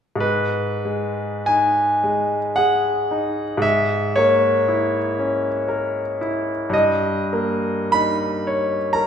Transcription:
0.16 G#2
0.20 B4
0.85 G#3
1.46 D#4 G#5
2.04 G#3
2.56 G#4 F#5
3.11 D#4
3.57 G#2
3.62 E5
4.16 A#3 C#5
4.68 E4
5.19 C#4
5.68 A#4
6.21 E4
6.70 G2 D#5
7.33 A#3
7.92 D#4 B5
8.47 C#5
8.93 A#4 A#5

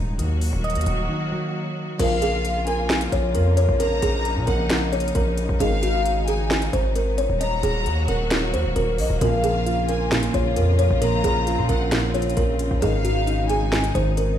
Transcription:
Already playing: D#1 G#2 C#3 D#3 G#3 D#4
0.19 D#2 D#3 F#3 A#3 F#4, closed hi-hat
0.41 open hi-hat
0.53 D#1
0.64 D#5, closed hi-hat
0.70 closed hi-hat
0.75 D#2, closed hi-hat
0.81 closed hi-hat
0.86 D#1, closed hi-hat
1.09 D#3
1.32 F#3
1.99 A#1 C#2 A#2 C#3 F3 A#3 F4 A#4 F5, closed hi-hat, crash
2.22 G#4, closed hi-hat
2.45 closed hi-hat
2.67 A#4 G#5, closed hi-hat
2.90 finger snap, snare, closed hi-hat
3.01 closed hi-hat
3.12 A#1 C#5, closed hi-hat
3.35 F2 A#4, closed hi-hat
3.57 C#5, closed hi-hat
3.69 A#1
3.80 D#4 A#4 A#5, closed hi-hat
4.02 A#1 G#4, closed hi-hat
4.25 closed hi-hat
4.36 A#2
4.47 A#1 A#4 F#5, closed hi-hat
4.70 finger snap, snare, closed hi-hat
4.92 C#5, closed hi-hat
5.00 closed hi-hat
5.08 closed hi-hat
5.15 A#1 A#4, closed hi-hat
5.37 closed hi-hat
5.49 A#1
5.60 G#1 G#2 D#3 G#3 D#4 G#4 F5, closed hi-hat
5.83 F#4, closed hi-hat
6.06 closed hi-hat
6.28 G#4 G#5, closed hi-hat
6.51 finger snap, snare, closed hi-hat
6.62 closed hi-hat
6.73 G#1 C5, closed hi-hat
6.95 A#4, closed hi-hat
7.18 C#5, closed hi-hat
7.30 D#1
7.41 F#3 A#3 F#4 D#5 A#5, closed hi-hat
7.63 D#1 G#4, closed hi-hat
7.86 D#2, closed hi-hat
8.08 D#1 A#4 F#5, closed hi-hat
8.31 finger snap, snare, closed hi-hat
8.54 D#2 C5, closed hi-hat
8.65 D#1
8.76 D#1 A#4, closed hi-hat
8.98 A#1 D#5, open hi-hat
9.10 D#1
9.21 A#1 C#2 A#2 C#3 F3 F4 A#4 F5, closed hi-hat
9.44 G#4, closed hi-hat
9.66 F4, closed hi-hat
9.89 A#4 G#5, closed hi-hat
10.11 A#2, finger snap, snare, closed hi-hat
10.23 closed hi-hat
10.34 A#1 F3 C#5, closed hi-hat
10.56 F2 A#4, closed hi-hat
10.79 C#5, closed hi-hat
10.90 A#1
11.02 A#2 C4 A#4 A#5, closed hi-hat
11.24 A#1 G#4, closed hi-hat
11.47 F4, closed hi-hat
11.58 A#2
11.69 A#1 A#4 F#5, closed hi-hat
11.92 A#2, finger snap, snare, closed hi-hat
12.14 F3 C#5, closed hi-hat
12.22 closed hi-hat
12.30 closed hi-hat
12.37 A#1 A#4, closed hi-hat
12.59 closed hi-hat
12.71 A#1
12.82 G#1 G#2 D#3 G#3 D#4 G#4 F5, closed hi-hat
13.05 F#4, closed hi-hat
13.27 D#4, closed hi-hat
13.49 G#4 G#5, closed hi-hat
13.72 G#2, finger snap, snare, closed hi-hat
13.84 closed hi-hat
13.95 G#1 D#3 C5, closed hi-hat
14.17 A#4, closed hi-hat

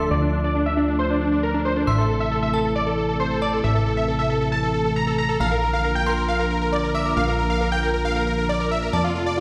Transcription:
Already playing: D3 F3 A3 C6, sub drop
0.11 D2 D5 D6
0.22 D4 D5
0.33 D4 D5
0.44 D5 D6
0.55 D4 D5
0.66 E5 E6
0.77 D4 D5
0.88 D4 D5
0.99 C5 C6
1.10 D4 D5
1.21 D4 D5
1.32 D4 D5
1.43 A#4 A#5
1.54 D4 D5
1.65 C5 C6
1.76 D4 D5
1.87 A1 C3 E3 E5 C6 E6
1.98 A4 A5
2.09 A4 A5
2.20 E5 E6
2.31 A4 A5
2.42 E5 E6
2.54 A4 A5
2.64 A4 A5
2.75 D5 D6
2.86 A4 A5
2.98 A4 A5
3.09 A4 A5
3.20 C5 C6
3.31 A4 A5
3.42 D5 A5 D6
3.53 A4 A5
3.64 A1 E5 E6
3.75 A4 A5
3.86 A4 A5
3.97 E5 E6
4.08 A4 A5
4.19 E5 E6
4.30 A4 A5
4.41 A4 A5
4.52 A5 A6
4.63 A4 A5
4.74 A4 A5
4.85 A4 A5
4.96 A#5 A#6
5.07 A4 A5
5.18 A#5 A#6
5.29 A4 A5
5.40 A#1 D3 F3 A#3 F5 A#5 F6
5.51 A#4 A#5
5.62 A#4 A#5
5.73 F5 F6
5.84 A#4 A#5
5.95 G5 G6
6.06 A#4 A#5 C6
6.17 A#4
6.28 F5 F6
6.39 A#4 A#5
6.50 A#4 A#5
6.62 A#4 A#5
6.72 D5 D6
6.83 A#4 A#5
6.94 E5 D6 E6
7.06 A#4 A#5
7.17 A#1 F5 F6
7.28 A#4 A#5
7.39 A#4 A#5
7.50 F5 F6
7.61 A#4 A#5
7.72 G5 G6
7.83 A#4 A#5
7.94 A#4 A#5
8.05 F5 F6
8.16 A#4 A#5
8.27 A#4
8.38 A#4 A#5
8.49 D5 D6
8.60 A#4 A#5
8.71 E5 E6
8.82 A#4 A#5
8.93 F2 C3 F3 A3 D5 A5 D6, riser
9.04 F4 F5
9.15 F4 F5
9.26 D5 D6

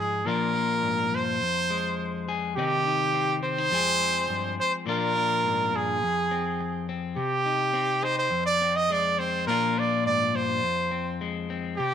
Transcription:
Already playing: G#2 F3 G#3 G#4
0.00 G#4
0.25 A#2 F3 A#3 D4 F4 A#4
0.55 A#3
0.82 G#2
1.12 G2 C5
1.40 F2
1.70 G#3
2.29 G#4
2.56 C3 D#3 C4 D#4 G4
2.86 D#4
3.14 C4
3.43 C4 C5
3.58 D#4
3.71 F2 F3 G#3 C4 G#4
4.01 C4
4.29 G2
4.60 C5
4.86 A#2 F3 A#3 D4 F4
4.91 A#4
5.15 D4
5.44 G#2
5.73 G2 G#4
6.03 F2
6.31 C4
6.61 muted clean electric guitar stroke
6.89 C4
7.16 C3 G4
7.46 D#4
7.73 C4
8.03 D#4 C5
8.19 C5
8.31 F2
8.46 D5
8.61 C4
8.76 D#5
8.90 G#3 D5
9.19 C4 C5
9.47 A#2 F3 A#3 D4 F4 A#4
9.78 D4 D5
10.05 G#2 D5
10.34 G2 C5
10.63 F2
10.91 C4
11.21 G#3
11.50 C4
11.77 C3 G4

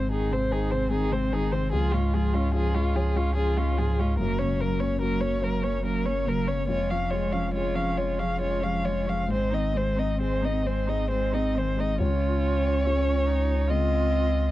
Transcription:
Already playing: G#1 G#2 D#3 G#3 C4 C5
0.10 D#3 D#4 G#4
0.30 C3 C4 C5
0.51 D#3 D#4 G#4 C5
0.70 C3 C4 G#4 C5
0.90 D#3 C4 D#4 G#4
1.11 C3 G#3 C4 C5
1.31 D#3 D#4 G#4
1.52 C3 G#3 C4 C5
1.72 C#2 F3 F4 G#4
1.92 G#2 G#3 C#4 F4
2.13 F3 G#3 F4 G#4
2.33 G#3 C#4 F4
2.54 F3 F4 G#4
2.74 G#3 C#4 F4 G#4
2.94 F3 F4 G#4 C#5
3.15 G#3 C#4 F4 G#4
3.35 F3 C#4 F4 G#4
3.56 G#3 C#4 F4
3.77 G#2 F3 F4 G#4
3.98 G#3 C#4 F4
4.18 F#1 F#2 F#3 A#3 A#4
4.39 C#3 A#3 C#4 C#5
4.60 F#3 A#3 A#4
4.79 A#3 C#4 C#5
5.00 F#3 A#3 F#4 A#4
5.20 A#3 C#4 A#4 C#5
5.41 F#3 A#3 A#4 C#5
5.62 A#3 C#4 A#4 C#5
5.83 F#3 A#3 C#4 A#4
6.05 A#3 C#4 C#5
6.26 C#3 F#3 A#3 A#4
6.46 A#3 C#4 C#5
6.68 F1 F2 G#3 F4 C#5
6.90 F3 C#4 F5
7.10 G#3 F4 C#5
7.32 F3 C#4 F5
7.54 G#3 F4 G#4 C#5
7.75 F3 C#4 F5
7.97 G#3 F4 C#5
8.19 F3 C#4 G#4 F5
8.40 G#3 C#4 F4 C#5
8.61 F3 G#3 C#4 F5
8.84 F3 G#3 F4 C#5
9.06 F3 G#3 C#4 F5
9.28 G#1 G#2 G#3 C4
9.33 C5
9.50 D#3 C4 D#4 D#5
9.74 G#3 C4 C5
9.96 C4 D#4 D#5
10.19 G#3 C4 G#4 C5
10.42 C4 D#4 D#5
10.63 G#3 C4 C5
10.87 C4 D#4 G#4 D#5
11.09 G#3 C4 C5
11.32 G#3 C4 D#4 D#5
11.55 D#3 G#3 C4 C5
11.76 G#3 C4 D#4 D#5
11.99 C#2 C#4 F4 C#5
12.85 G#3 C#4 F4
13.26 D#4
13.68 C#3 G#3 C4 F4 D#5

